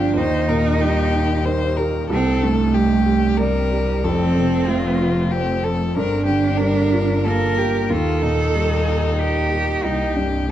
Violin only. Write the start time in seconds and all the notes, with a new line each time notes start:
Already playing: G4
0.16 C5
0.48 A#4
0.81 G4
1.46 C5
1.77 A#4
2.10 A4
2.74 G4
3.37 A#4
4.04 A4
4.68 F4
5.31 G4
5.64 A4
5.95 A#4
6.26 G4
6.57 A#4
7.24 A4
7.59 G4
7.90 F4
8.22 D#4
9.85 G4